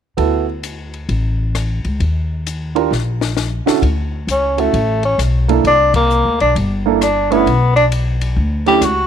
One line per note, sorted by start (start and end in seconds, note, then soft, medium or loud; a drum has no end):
0.17 1.05 D2 medium
0.17 0.44 B3 soft
0.17 0.44 E4 soft
0.17 0.44 F#4 soft
0.17 0.44 A4 medium
0.17 kick soft
0.17 ride soft
0.63 hi-hat pedal soft
0.63 ride medium
0.94 ride soft
1.09 1.80 A1 medium
1.09 kick soft
1.09 ride soft
1.55 cross-stick medium
1.55 hi-hat pedal soft
1.55 ride medium
1.85 1.99 C#2 medium
1.85 ride soft
2.00 2.87 D#2 medium
2.00 kick soft
2.00 ride soft
2.47 hi-hat pedal soft
2.47 ride medium
2.75 2.89 D4 medium
2.75 2.90 F4 soft
2.75 2.90 G4 soft
2.75 2.90 A#4 medium
2.75 ride soft
2.91 3.62 A#1 medium
2.91 snare soft
3.21 snare medium
3.37 snare medium
3.37 hi-hat pedal medium
3.66 3.80 D3 medium
3.66 3.81 C#4 soft
3.66 3.81 E4 soft
3.66 3.81 F#4 medium
3.66 3.81 A4 medium
3.66 muted upright bass stroke soft
3.66 snare medium
3.82 4.24 D2 medium
3.82 kick medium
3.82 ride medium
4.27 4.70 C#2 medium
4.27 4.61 C#4 medium
4.27 hi-hat pedal soft
4.27 ride medium
4.57 5.04 A3 medium
4.57 4.71 C#4 soft
4.57 4.72 E4 soft
4.57 4.72 F#4 soft
4.57 4.72 A4 soft
4.57 ride soft
4.73 5.16 A1 medium
4.73 kick soft
4.73 ride soft
5.03 5.19 C#4 medium
5.03 ride soft
5.18 5.61 B1 medium
5.18 cross-stick medium
5.18 hi-hat pedal soft
5.18 ride medium
5.48 5.63 A#3 medium
5.48 5.63 D4 soft
5.48 5.63 E4 medium
5.48 5.63 A4 medium
5.48 ride soft
5.64 6.21 C2 medium
5.64 5.93 D4 medium
5.64 kick soft
5.64 ride soft
5.94 6.37 A#3 medium
5.94 kick medium
5.94 ride medium
6.10 hi-hat pedal medium
6.25 6.39 D2 medium
6.40 6.54 B1 medium
6.40 6.55 D4 medium
6.40 ride soft
6.55 7.42 G1 medium
6.55 kick soft
6.55 ride medium
6.86 6.99 A#3 medium
6.86 7.00 D4 medium
6.86 7.00 E4 medium
6.86 7.00 A4 medium
7.01 7.33 D4 medium
7.01 cross-stick medium
7.01 hi-hat pedal medium
7.01 ride medium
7.30 7.44 A3 medium
7.30 7.75 B3 medium
7.30 7.45 C#4 medium
7.30 7.45 D4 medium
7.30 7.45 E4 medium
7.30 ride soft
7.46 8.33 B1 medium
7.46 kick soft
7.46 ride soft
7.76 7.85 D4 medium
7.76 ride soft
7.92 hi-hat pedal soft
7.92 ride medium
8.21 ride medium
8.37 8.79 D2 medium
8.37 kick soft
8.66 8.80 A3 medium
8.66 8.81 C#4 medium
8.66 8.81 D4 soft
8.66 8.81 E4 medium
8.66 8.86 G4 medium
8.66 ride soft
8.81 9.07 C#2 medium
8.81 9.07 F#4 medium
8.81 cross-stick medium
8.81 hi-hat pedal medium
8.81 ride medium